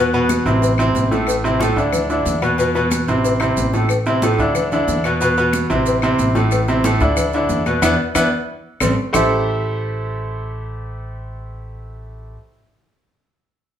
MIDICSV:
0, 0, Header, 1, 4, 480
1, 0, Start_track
1, 0, Key_signature, 0, "minor"
1, 0, Tempo, 328048
1, 1870, Time_signature, 4, 2, 24, 8
1, 20178, End_track
2, 0, Start_track
2, 0, Title_t, "Grand piano"
2, 0, Program_c, 0, 0
2, 0, Note_on_c, 0, 47, 86
2, 0, Note_on_c, 0, 59, 90
2, 0, Note_on_c, 0, 71, 93
2, 157, Note_off_c, 0, 47, 0
2, 159, Note_off_c, 0, 59, 0
2, 162, Note_off_c, 0, 71, 0
2, 198, Note_on_c, 0, 47, 86
2, 203, Note_on_c, 0, 59, 90
2, 205, Note_on_c, 0, 71, 96
2, 589, Note_off_c, 0, 47, 0
2, 591, Note_off_c, 0, 59, 0
2, 593, Note_off_c, 0, 71, 0
2, 669, Note_on_c, 0, 60, 78
2, 670, Note_on_c, 0, 48, 82
2, 677, Note_on_c, 0, 64, 81
2, 1063, Note_off_c, 0, 48, 0
2, 1063, Note_off_c, 0, 60, 0
2, 1067, Note_off_c, 0, 64, 0
2, 1154, Note_on_c, 0, 48, 76
2, 1157, Note_on_c, 0, 60, 90
2, 1160, Note_on_c, 0, 64, 81
2, 1546, Note_off_c, 0, 48, 0
2, 1547, Note_off_c, 0, 60, 0
2, 1549, Note_off_c, 0, 64, 0
2, 1628, Note_on_c, 0, 45, 83
2, 1630, Note_on_c, 0, 57, 87
2, 1634, Note_on_c, 0, 69, 81
2, 2022, Note_off_c, 0, 45, 0
2, 2023, Note_off_c, 0, 57, 0
2, 2025, Note_off_c, 0, 69, 0
2, 2108, Note_on_c, 0, 48, 75
2, 2109, Note_on_c, 0, 60, 79
2, 2117, Note_on_c, 0, 64, 85
2, 2305, Note_off_c, 0, 48, 0
2, 2305, Note_off_c, 0, 60, 0
2, 2310, Note_off_c, 0, 64, 0
2, 2335, Note_on_c, 0, 45, 89
2, 2342, Note_on_c, 0, 69, 88
2, 2343, Note_on_c, 0, 57, 90
2, 2537, Note_off_c, 0, 45, 0
2, 2541, Note_off_c, 0, 69, 0
2, 2542, Note_off_c, 0, 57, 0
2, 2582, Note_on_c, 0, 50, 79
2, 2589, Note_on_c, 0, 62, 85
2, 2590, Note_on_c, 0, 64, 76
2, 2977, Note_off_c, 0, 50, 0
2, 2982, Note_off_c, 0, 62, 0
2, 2982, Note_off_c, 0, 64, 0
2, 3069, Note_on_c, 0, 50, 80
2, 3071, Note_on_c, 0, 62, 83
2, 3074, Note_on_c, 0, 64, 76
2, 3461, Note_off_c, 0, 50, 0
2, 3462, Note_off_c, 0, 62, 0
2, 3464, Note_off_c, 0, 64, 0
2, 3544, Note_on_c, 0, 47, 84
2, 3544, Note_on_c, 0, 59, 89
2, 3548, Note_on_c, 0, 71, 83
2, 3741, Note_off_c, 0, 47, 0
2, 3741, Note_off_c, 0, 59, 0
2, 3743, Note_off_c, 0, 71, 0
2, 3774, Note_on_c, 0, 47, 85
2, 3780, Note_on_c, 0, 59, 88
2, 3786, Note_on_c, 0, 71, 82
2, 3975, Note_off_c, 0, 47, 0
2, 3978, Note_off_c, 0, 59, 0
2, 3982, Note_off_c, 0, 71, 0
2, 4024, Note_on_c, 0, 47, 84
2, 4027, Note_on_c, 0, 59, 89
2, 4029, Note_on_c, 0, 71, 86
2, 4417, Note_off_c, 0, 47, 0
2, 4419, Note_off_c, 0, 59, 0
2, 4420, Note_off_c, 0, 71, 0
2, 4512, Note_on_c, 0, 48, 77
2, 4512, Note_on_c, 0, 60, 78
2, 4519, Note_on_c, 0, 64, 74
2, 4901, Note_off_c, 0, 60, 0
2, 4902, Note_off_c, 0, 48, 0
2, 4906, Note_off_c, 0, 64, 0
2, 4974, Note_on_c, 0, 48, 82
2, 4980, Note_on_c, 0, 60, 78
2, 4982, Note_on_c, 0, 64, 81
2, 5370, Note_off_c, 0, 48, 0
2, 5374, Note_off_c, 0, 60, 0
2, 5375, Note_off_c, 0, 64, 0
2, 5466, Note_on_c, 0, 45, 77
2, 5474, Note_on_c, 0, 57, 76
2, 5474, Note_on_c, 0, 69, 83
2, 5661, Note_off_c, 0, 45, 0
2, 5665, Note_off_c, 0, 57, 0
2, 5665, Note_off_c, 0, 69, 0
2, 5940, Note_on_c, 0, 48, 72
2, 5947, Note_on_c, 0, 60, 81
2, 5948, Note_on_c, 0, 64, 83
2, 6137, Note_off_c, 0, 48, 0
2, 6141, Note_off_c, 0, 60, 0
2, 6142, Note_off_c, 0, 64, 0
2, 6189, Note_on_c, 0, 45, 90
2, 6193, Note_on_c, 0, 57, 85
2, 6195, Note_on_c, 0, 69, 85
2, 6382, Note_off_c, 0, 45, 0
2, 6384, Note_off_c, 0, 57, 0
2, 6385, Note_off_c, 0, 69, 0
2, 6428, Note_on_c, 0, 50, 83
2, 6430, Note_on_c, 0, 62, 82
2, 6436, Note_on_c, 0, 64, 81
2, 6817, Note_off_c, 0, 50, 0
2, 6819, Note_off_c, 0, 62, 0
2, 6822, Note_off_c, 0, 64, 0
2, 6906, Note_on_c, 0, 50, 84
2, 6919, Note_on_c, 0, 62, 88
2, 6921, Note_on_c, 0, 64, 80
2, 7296, Note_off_c, 0, 50, 0
2, 7304, Note_off_c, 0, 62, 0
2, 7305, Note_off_c, 0, 64, 0
2, 7385, Note_on_c, 0, 47, 81
2, 7391, Note_on_c, 0, 71, 80
2, 7392, Note_on_c, 0, 59, 89
2, 7578, Note_off_c, 0, 47, 0
2, 7582, Note_off_c, 0, 71, 0
2, 7583, Note_off_c, 0, 59, 0
2, 7623, Note_on_c, 0, 47, 90
2, 7628, Note_on_c, 0, 59, 91
2, 7636, Note_on_c, 0, 71, 95
2, 7817, Note_off_c, 0, 47, 0
2, 7820, Note_off_c, 0, 59, 0
2, 7825, Note_off_c, 0, 71, 0
2, 7861, Note_on_c, 0, 47, 83
2, 7868, Note_on_c, 0, 71, 92
2, 7869, Note_on_c, 0, 59, 93
2, 8253, Note_off_c, 0, 47, 0
2, 8257, Note_off_c, 0, 59, 0
2, 8257, Note_off_c, 0, 71, 0
2, 8335, Note_on_c, 0, 48, 85
2, 8337, Note_on_c, 0, 60, 86
2, 8345, Note_on_c, 0, 64, 86
2, 8728, Note_off_c, 0, 48, 0
2, 8729, Note_off_c, 0, 60, 0
2, 8734, Note_off_c, 0, 64, 0
2, 8821, Note_on_c, 0, 48, 92
2, 8825, Note_on_c, 0, 60, 92
2, 8831, Note_on_c, 0, 64, 84
2, 9212, Note_off_c, 0, 48, 0
2, 9214, Note_off_c, 0, 60, 0
2, 9218, Note_off_c, 0, 64, 0
2, 9292, Note_on_c, 0, 45, 92
2, 9301, Note_on_c, 0, 57, 82
2, 9308, Note_on_c, 0, 69, 84
2, 9687, Note_off_c, 0, 45, 0
2, 9692, Note_off_c, 0, 57, 0
2, 9696, Note_off_c, 0, 69, 0
2, 9775, Note_on_c, 0, 48, 80
2, 9780, Note_on_c, 0, 60, 82
2, 9785, Note_on_c, 0, 64, 84
2, 9972, Note_off_c, 0, 48, 0
2, 9975, Note_off_c, 0, 60, 0
2, 9978, Note_off_c, 0, 64, 0
2, 10015, Note_on_c, 0, 45, 93
2, 10017, Note_on_c, 0, 57, 91
2, 10028, Note_on_c, 0, 69, 95
2, 10212, Note_off_c, 0, 45, 0
2, 10213, Note_off_c, 0, 57, 0
2, 10219, Note_off_c, 0, 69, 0
2, 10253, Note_on_c, 0, 50, 77
2, 10256, Note_on_c, 0, 62, 83
2, 10263, Note_on_c, 0, 64, 84
2, 10647, Note_off_c, 0, 50, 0
2, 10649, Note_off_c, 0, 62, 0
2, 10653, Note_off_c, 0, 64, 0
2, 10741, Note_on_c, 0, 50, 86
2, 10741, Note_on_c, 0, 62, 86
2, 10752, Note_on_c, 0, 64, 83
2, 11132, Note_off_c, 0, 50, 0
2, 11132, Note_off_c, 0, 62, 0
2, 11138, Note_off_c, 0, 64, 0
2, 11211, Note_on_c, 0, 47, 80
2, 11217, Note_on_c, 0, 59, 80
2, 11217, Note_on_c, 0, 71, 82
2, 11410, Note_off_c, 0, 47, 0
2, 11413, Note_off_c, 0, 59, 0
2, 11413, Note_off_c, 0, 71, 0
2, 11444, Note_on_c, 0, 64, 109
2, 11445, Note_on_c, 0, 59, 108
2, 11446, Note_on_c, 0, 62, 97
2, 11602, Note_off_c, 0, 64, 0
2, 11603, Note_off_c, 0, 59, 0
2, 11603, Note_off_c, 0, 62, 0
2, 11924, Note_on_c, 0, 62, 97
2, 11926, Note_on_c, 0, 64, 103
2, 11928, Note_on_c, 0, 59, 111
2, 12082, Note_off_c, 0, 62, 0
2, 12083, Note_off_c, 0, 64, 0
2, 12085, Note_off_c, 0, 59, 0
2, 12886, Note_on_c, 0, 57, 86
2, 12887, Note_on_c, 0, 60, 83
2, 12889, Note_on_c, 0, 55, 87
2, 13044, Note_off_c, 0, 57, 0
2, 13045, Note_off_c, 0, 55, 0
2, 13045, Note_off_c, 0, 60, 0
2, 13354, Note_on_c, 0, 57, 97
2, 13360, Note_on_c, 0, 67, 98
2, 13361, Note_on_c, 0, 64, 90
2, 13363, Note_on_c, 0, 69, 89
2, 13369, Note_on_c, 0, 72, 88
2, 13374, Note_on_c, 0, 76, 102
2, 18054, Note_off_c, 0, 57, 0
2, 18060, Note_off_c, 0, 67, 0
2, 18061, Note_off_c, 0, 64, 0
2, 18062, Note_off_c, 0, 69, 0
2, 18069, Note_off_c, 0, 72, 0
2, 18074, Note_off_c, 0, 76, 0
2, 20178, End_track
3, 0, Start_track
3, 0, Title_t, "Upright bass"
3, 0, Program_c, 1, 32
3, 0, Note_on_c, 1, 40, 97
3, 588, Note_off_c, 1, 40, 0
3, 666, Note_on_c, 1, 33, 101
3, 1337, Note_off_c, 1, 33, 0
3, 1385, Note_on_c, 1, 33, 104
3, 2503, Note_off_c, 1, 33, 0
3, 2578, Note_on_c, 1, 38, 98
3, 3251, Note_off_c, 1, 38, 0
3, 3298, Note_on_c, 1, 40, 100
3, 4417, Note_off_c, 1, 40, 0
3, 4498, Note_on_c, 1, 33, 90
3, 5169, Note_off_c, 1, 33, 0
3, 5214, Note_on_c, 1, 33, 93
3, 6333, Note_off_c, 1, 33, 0
3, 6411, Note_on_c, 1, 38, 95
3, 7083, Note_off_c, 1, 38, 0
3, 7135, Note_on_c, 1, 40, 99
3, 8252, Note_off_c, 1, 40, 0
3, 8340, Note_on_c, 1, 33, 95
3, 9007, Note_off_c, 1, 33, 0
3, 9053, Note_on_c, 1, 33, 99
3, 10171, Note_off_c, 1, 33, 0
3, 10251, Note_on_c, 1, 38, 102
3, 10922, Note_off_c, 1, 38, 0
3, 10965, Note_on_c, 1, 40, 97
3, 11416, Note_off_c, 1, 40, 0
3, 11441, Note_on_c, 1, 40, 101
3, 11626, Note_off_c, 1, 40, 0
3, 11920, Note_on_c, 1, 40, 97
3, 12105, Note_off_c, 1, 40, 0
3, 12885, Note_on_c, 1, 33, 101
3, 13069, Note_off_c, 1, 33, 0
3, 13370, Note_on_c, 1, 33, 104
3, 18070, Note_off_c, 1, 33, 0
3, 20178, End_track
4, 0, Start_track
4, 0, Title_t, "Drums"
4, 192, Note_on_c, 9, 63, 37
4, 199, Note_on_c, 9, 70, 31
4, 338, Note_off_c, 9, 63, 0
4, 345, Note_off_c, 9, 70, 0
4, 429, Note_on_c, 9, 63, 93
4, 433, Note_on_c, 9, 70, 74
4, 434, Note_on_c, 9, 75, 73
4, 436, Note_on_c, 9, 56, 68
4, 575, Note_off_c, 9, 63, 0
4, 579, Note_off_c, 9, 70, 0
4, 580, Note_off_c, 9, 75, 0
4, 582, Note_off_c, 9, 56, 0
4, 665, Note_on_c, 9, 63, 33
4, 679, Note_on_c, 9, 70, 28
4, 682, Note_on_c, 9, 56, 77
4, 811, Note_off_c, 9, 63, 0
4, 825, Note_off_c, 9, 70, 0
4, 828, Note_off_c, 9, 56, 0
4, 908, Note_on_c, 9, 63, 36
4, 910, Note_on_c, 9, 56, 111
4, 924, Note_on_c, 9, 70, 78
4, 1054, Note_off_c, 9, 63, 0
4, 1057, Note_off_c, 9, 56, 0
4, 1070, Note_off_c, 9, 70, 0
4, 1141, Note_on_c, 9, 75, 68
4, 1169, Note_on_c, 9, 70, 32
4, 1288, Note_off_c, 9, 75, 0
4, 1315, Note_off_c, 9, 70, 0
4, 1390, Note_on_c, 9, 63, 78
4, 1396, Note_on_c, 9, 56, 74
4, 1401, Note_on_c, 9, 70, 67
4, 1536, Note_off_c, 9, 63, 0
4, 1543, Note_off_c, 9, 56, 0
4, 1547, Note_off_c, 9, 70, 0
4, 1639, Note_on_c, 9, 63, 85
4, 1642, Note_on_c, 9, 70, 33
4, 1785, Note_off_c, 9, 63, 0
4, 1788, Note_off_c, 9, 70, 0
4, 1854, Note_on_c, 9, 75, 73
4, 1867, Note_on_c, 9, 56, 116
4, 1887, Note_on_c, 9, 70, 78
4, 2000, Note_off_c, 9, 75, 0
4, 2013, Note_off_c, 9, 56, 0
4, 2033, Note_off_c, 9, 70, 0
4, 2108, Note_on_c, 9, 63, 34
4, 2127, Note_on_c, 9, 70, 31
4, 2254, Note_off_c, 9, 63, 0
4, 2274, Note_off_c, 9, 70, 0
4, 2349, Note_on_c, 9, 63, 94
4, 2352, Note_on_c, 9, 56, 74
4, 2367, Note_on_c, 9, 70, 79
4, 2496, Note_off_c, 9, 63, 0
4, 2498, Note_off_c, 9, 56, 0
4, 2513, Note_off_c, 9, 70, 0
4, 2601, Note_on_c, 9, 70, 29
4, 2747, Note_off_c, 9, 70, 0
4, 2817, Note_on_c, 9, 56, 105
4, 2817, Note_on_c, 9, 75, 72
4, 2826, Note_on_c, 9, 63, 35
4, 2826, Note_on_c, 9, 64, 86
4, 2833, Note_on_c, 9, 70, 73
4, 2963, Note_off_c, 9, 56, 0
4, 2964, Note_off_c, 9, 75, 0
4, 2972, Note_off_c, 9, 63, 0
4, 2972, Note_off_c, 9, 64, 0
4, 2980, Note_off_c, 9, 70, 0
4, 3066, Note_on_c, 9, 63, 32
4, 3073, Note_on_c, 9, 70, 31
4, 3212, Note_off_c, 9, 63, 0
4, 3220, Note_off_c, 9, 70, 0
4, 3299, Note_on_c, 9, 56, 71
4, 3303, Note_on_c, 9, 63, 78
4, 3311, Note_on_c, 9, 70, 68
4, 3445, Note_off_c, 9, 56, 0
4, 3449, Note_off_c, 9, 63, 0
4, 3457, Note_off_c, 9, 70, 0
4, 3540, Note_on_c, 9, 63, 69
4, 3543, Note_on_c, 9, 56, 75
4, 3544, Note_on_c, 9, 75, 66
4, 3559, Note_on_c, 9, 70, 31
4, 3686, Note_off_c, 9, 63, 0
4, 3689, Note_off_c, 9, 56, 0
4, 3691, Note_off_c, 9, 75, 0
4, 3705, Note_off_c, 9, 70, 0
4, 3778, Note_on_c, 9, 56, 114
4, 3778, Note_on_c, 9, 60, 73
4, 3780, Note_on_c, 9, 63, 35
4, 3795, Note_on_c, 9, 70, 71
4, 3925, Note_off_c, 9, 56, 0
4, 3925, Note_off_c, 9, 60, 0
4, 3926, Note_off_c, 9, 63, 0
4, 3941, Note_off_c, 9, 70, 0
4, 4024, Note_on_c, 9, 60, 99
4, 4029, Note_on_c, 9, 63, 35
4, 4034, Note_on_c, 9, 70, 32
4, 4171, Note_off_c, 9, 60, 0
4, 4175, Note_off_c, 9, 63, 0
4, 4181, Note_off_c, 9, 70, 0
4, 4261, Note_on_c, 9, 70, 85
4, 4262, Note_on_c, 9, 56, 70
4, 4262, Note_on_c, 9, 60, 74
4, 4266, Note_on_c, 9, 63, 95
4, 4268, Note_on_c, 9, 75, 69
4, 4408, Note_off_c, 9, 56, 0
4, 4408, Note_off_c, 9, 60, 0
4, 4408, Note_off_c, 9, 70, 0
4, 4412, Note_off_c, 9, 63, 0
4, 4415, Note_off_c, 9, 75, 0
4, 4510, Note_on_c, 9, 63, 36
4, 4510, Note_on_c, 9, 70, 29
4, 4513, Note_on_c, 9, 56, 69
4, 4656, Note_off_c, 9, 70, 0
4, 4657, Note_off_c, 9, 63, 0
4, 4659, Note_off_c, 9, 56, 0
4, 4748, Note_on_c, 9, 56, 109
4, 4748, Note_on_c, 9, 61, 106
4, 4752, Note_on_c, 9, 70, 73
4, 4757, Note_on_c, 9, 63, 34
4, 4895, Note_off_c, 9, 56, 0
4, 4895, Note_off_c, 9, 61, 0
4, 4899, Note_off_c, 9, 70, 0
4, 4903, Note_off_c, 9, 63, 0
4, 4973, Note_on_c, 9, 75, 77
4, 4993, Note_on_c, 9, 63, 34
4, 4999, Note_on_c, 9, 70, 32
4, 5119, Note_off_c, 9, 75, 0
4, 5139, Note_off_c, 9, 63, 0
4, 5145, Note_off_c, 9, 70, 0
4, 5225, Note_on_c, 9, 56, 71
4, 5225, Note_on_c, 9, 61, 77
4, 5225, Note_on_c, 9, 63, 86
4, 5226, Note_on_c, 9, 70, 66
4, 5372, Note_off_c, 9, 56, 0
4, 5372, Note_off_c, 9, 61, 0
4, 5372, Note_off_c, 9, 63, 0
4, 5372, Note_off_c, 9, 70, 0
4, 5463, Note_on_c, 9, 61, 72
4, 5467, Note_on_c, 9, 63, 81
4, 5473, Note_on_c, 9, 70, 31
4, 5610, Note_off_c, 9, 61, 0
4, 5613, Note_off_c, 9, 63, 0
4, 5619, Note_off_c, 9, 70, 0
4, 5691, Note_on_c, 9, 75, 75
4, 5700, Note_on_c, 9, 56, 115
4, 5706, Note_on_c, 9, 70, 71
4, 5838, Note_off_c, 9, 75, 0
4, 5847, Note_off_c, 9, 56, 0
4, 5853, Note_off_c, 9, 70, 0
4, 5941, Note_on_c, 9, 70, 32
4, 5950, Note_on_c, 9, 63, 34
4, 6087, Note_off_c, 9, 70, 0
4, 6097, Note_off_c, 9, 63, 0
4, 6179, Note_on_c, 9, 63, 103
4, 6179, Note_on_c, 9, 70, 76
4, 6186, Note_on_c, 9, 56, 75
4, 6325, Note_off_c, 9, 63, 0
4, 6326, Note_off_c, 9, 70, 0
4, 6332, Note_off_c, 9, 56, 0
4, 6419, Note_on_c, 9, 63, 38
4, 6428, Note_on_c, 9, 70, 28
4, 6566, Note_off_c, 9, 63, 0
4, 6574, Note_off_c, 9, 70, 0
4, 6656, Note_on_c, 9, 75, 70
4, 6657, Note_on_c, 9, 63, 36
4, 6657, Note_on_c, 9, 64, 85
4, 6658, Note_on_c, 9, 56, 96
4, 6662, Note_on_c, 9, 70, 73
4, 6802, Note_off_c, 9, 75, 0
4, 6804, Note_off_c, 9, 56, 0
4, 6804, Note_off_c, 9, 63, 0
4, 6804, Note_off_c, 9, 64, 0
4, 6808, Note_off_c, 9, 70, 0
4, 6902, Note_on_c, 9, 70, 29
4, 6905, Note_on_c, 9, 63, 29
4, 6905, Note_on_c, 9, 64, 69
4, 7048, Note_off_c, 9, 70, 0
4, 7051, Note_off_c, 9, 63, 0
4, 7051, Note_off_c, 9, 64, 0
4, 7142, Note_on_c, 9, 56, 76
4, 7142, Note_on_c, 9, 63, 82
4, 7146, Note_on_c, 9, 70, 64
4, 7288, Note_off_c, 9, 56, 0
4, 7288, Note_off_c, 9, 63, 0
4, 7292, Note_off_c, 9, 70, 0
4, 7377, Note_on_c, 9, 75, 66
4, 7379, Note_on_c, 9, 56, 79
4, 7391, Note_on_c, 9, 70, 31
4, 7523, Note_off_c, 9, 75, 0
4, 7526, Note_off_c, 9, 56, 0
4, 7538, Note_off_c, 9, 70, 0
4, 7614, Note_on_c, 9, 63, 35
4, 7616, Note_on_c, 9, 56, 106
4, 7625, Note_on_c, 9, 70, 80
4, 7761, Note_off_c, 9, 63, 0
4, 7762, Note_off_c, 9, 56, 0
4, 7771, Note_off_c, 9, 70, 0
4, 7855, Note_on_c, 9, 63, 32
4, 7868, Note_on_c, 9, 70, 31
4, 8001, Note_off_c, 9, 63, 0
4, 8015, Note_off_c, 9, 70, 0
4, 8091, Note_on_c, 9, 75, 69
4, 8096, Note_on_c, 9, 63, 105
4, 8103, Note_on_c, 9, 56, 72
4, 8107, Note_on_c, 9, 70, 74
4, 8238, Note_off_c, 9, 75, 0
4, 8243, Note_off_c, 9, 63, 0
4, 8250, Note_off_c, 9, 56, 0
4, 8253, Note_off_c, 9, 70, 0
4, 8342, Note_on_c, 9, 56, 73
4, 8344, Note_on_c, 9, 63, 37
4, 8347, Note_on_c, 9, 70, 30
4, 8488, Note_off_c, 9, 56, 0
4, 8490, Note_off_c, 9, 63, 0
4, 8493, Note_off_c, 9, 70, 0
4, 8573, Note_on_c, 9, 70, 78
4, 8581, Note_on_c, 9, 56, 114
4, 8588, Note_on_c, 9, 63, 36
4, 8720, Note_off_c, 9, 70, 0
4, 8727, Note_off_c, 9, 56, 0
4, 8734, Note_off_c, 9, 63, 0
4, 8812, Note_on_c, 9, 75, 70
4, 8821, Note_on_c, 9, 63, 35
4, 8827, Note_on_c, 9, 70, 30
4, 8958, Note_off_c, 9, 75, 0
4, 8967, Note_off_c, 9, 63, 0
4, 8974, Note_off_c, 9, 70, 0
4, 9054, Note_on_c, 9, 70, 66
4, 9059, Note_on_c, 9, 63, 83
4, 9062, Note_on_c, 9, 56, 74
4, 9200, Note_off_c, 9, 70, 0
4, 9205, Note_off_c, 9, 63, 0
4, 9209, Note_off_c, 9, 56, 0
4, 9296, Note_on_c, 9, 63, 86
4, 9301, Note_on_c, 9, 70, 33
4, 9443, Note_off_c, 9, 63, 0
4, 9447, Note_off_c, 9, 70, 0
4, 9531, Note_on_c, 9, 70, 74
4, 9539, Note_on_c, 9, 75, 67
4, 9541, Note_on_c, 9, 56, 109
4, 9677, Note_off_c, 9, 70, 0
4, 9686, Note_off_c, 9, 75, 0
4, 9687, Note_off_c, 9, 56, 0
4, 9772, Note_on_c, 9, 63, 33
4, 9775, Note_on_c, 9, 70, 31
4, 9918, Note_off_c, 9, 63, 0
4, 9922, Note_off_c, 9, 70, 0
4, 10011, Note_on_c, 9, 63, 103
4, 10013, Note_on_c, 9, 70, 82
4, 10016, Note_on_c, 9, 56, 72
4, 10157, Note_off_c, 9, 63, 0
4, 10159, Note_off_c, 9, 70, 0
4, 10162, Note_off_c, 9, 56, 0
4, 10246, Note_on_c, 9, 70, 30
4, 10260, Note_on_c, 9, 63, 37
4, 10393, Note_off_c, 9, 70, 0
4, 10406, Note_off_c, 9, 63, 0
4, 10487, Note_on_c, 9, 56, 105
4, 10488, Note_on_c, 9, 75, 75
4, 10490, Note_on_c, 9, 63, 36
4, 10490, Note_on_c, 9, 64, 83
4, 10490, Note_on_c, 9, 70, 83
4, 10634, Note_off_c, 9, 56, 0
4, 10635, Note_off_c, 9, 75, 0
4, 10636, Note_off_c, 9, 70, 0
4, 10637, Note_off_c, 9, 63, 0
4, 10637, Note_off_c, 9, 64, 0
4, 10724, Note_on_c, 9, 70, 32
4, 10727, Note_on_c, 9, 63, 32
4, 10870, Note_off_c, 9, 70, 0
4, 10874, Note_off_c, 9, 63, 0
4, 10964, Note_on_c, 9, 70, 65
4, 10965, Note_on_c, 9, 56, 79
4, 10967, Note_on_c, 9, 63, 83
4, 11110, Note_off_c, 9, 70, 0
4, 11112, Note_off_c, 9, 56, 0
4, 11113, Note_off_c, 9, 63, 0
4, 11208, Note_on_c, 9, 63, 67
4, 11211, Note_on_c, 9, 56, 74
4, 11211, Note_on_c, 9, 70, 33
4, 11211, Note_on_c, 9, 75, 64
4, 11354, Note_off_c, 9, 63, 0
4, 11357, Note_off_c, 9, 56, 0
4, 11358, Note_off_c, 9, 70, 0
4, 11358, Note_off_c, 9, 75, 0
4, 11448, Note_on_c, 9, 64, 97
4, 11448, Note_on_c, 9, 70, 100
4, 11453, Note_on_c, 9, 56, 97
4, 11453, Note_on_c, 9, 75, 117
4, 11594, Note_off_c, 9, 64, 0
4, 11594, Note_off_c, 9, 70, 0
4, 11599, Note_off_c, 9, 56, 0
4, 11600, Note_off_c, 9, 75, 0
4, 11925, Note_on_c, 9, 75, 110
4, 11930, Note_on_c, 9, 56, 104
4, 11932, Note_on_c, 9, 64, 102
4, 11932, Note_on_c, 9, 70, 108
4, 12072, Note_off_c, 9, 75, 0
4, 12077, Note_off_c, 9, 56, 0
4, 12078, Note_off_c, 9, 64, 0
4, 12079, Note_off_c, 9, 70, 0
4, 12882, Note_on_c, 9, 75, 107
4, 12894, Note_on_c, 9, 56, 108
4, 12895, Note_on_c, 9, 70, 94
4, 12897, Note_on_c, 9, 64, 103
4, 13029, Note_off_c, 9, 75, 0
4, 13040, Note_off_c, 9, 56, 0
4, 13041, Note_off_c, 9, 70, 0
4, 13044, Note_off_c, 9, 64, 0
4, 13372, Note_on_c, 9, 75, 113
4, 13378, Note_on_c, 9, 70, 102
4, 13380, Note_on_c, 9, 64, 105
4, 13383, Note_on_c, 9, 61, 105
4, 13518, Note_off_c, 9, 75, 0
4, 13525, Note_off_c, 9, 70, 0
4, 13527, Note_off_c, 9, 64, 0
4, 13529, Note_off_c, 9, 61, 0
4, 20178, End_track
0, 0, End_of_file